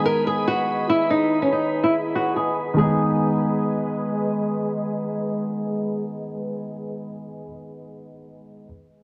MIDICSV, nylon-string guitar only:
0, 0, Header, 1, 2, 480
1, 0, Start_track
1, 0, Key_signature, 5, "minor"
1, 0, Tempo, 419580
1, 1262, Time_signature, 4, 2, 24, 8
1, 10333, End_track
2, 0, Start_track
2, 0, Title_t, "Nylon-string guitar"
2, 0, Program_c, 0, 24
2, 62, Note_on_c, 0, 70, 86
2, 283, Note_off_c, 0, 70, 0
2, 308, Note_on_c, 0, 68, 76
2, 526, Note_off_c, 0, 68, 0
2, 544, Note_on_c, 0, 66, 74
2, 994, Note_off_c, 0, 66, 0
2, 1023, Note_on_c, 0, 64, 87
2, 1244, Note_off_c, 0, 64, 0
2, 1262, Note_on_c, 0, 63, 92
2, 1600, Note_off_c, 0, 63, 0
2, 1625, Note_on_c, 0, 61, 81
2, 1734, Note_off_c, 0, 61, 0
2, 1743, Note_on_c, 0, 63, 77
2, 2081, Note_off_c, 0, 63, 0
2, 2099, Note_on_c, 0, 64, 84
2, 2211, Note_off_c, 0, 64, 0
2, 2464, Note_on_c, 0, 66, 83
2, 2684, Note_off_c, 0, 66, 0
2, 2702, Note_on_c, 0, 68, 85
2, 2923, Note_off_c, 0, 68, 0
2, 3182, Note_on_c, 0, 68, 80
2, 4576, Note_off_c, 0, 68, 0
2, 10333, End_track
0, 0, End_of_file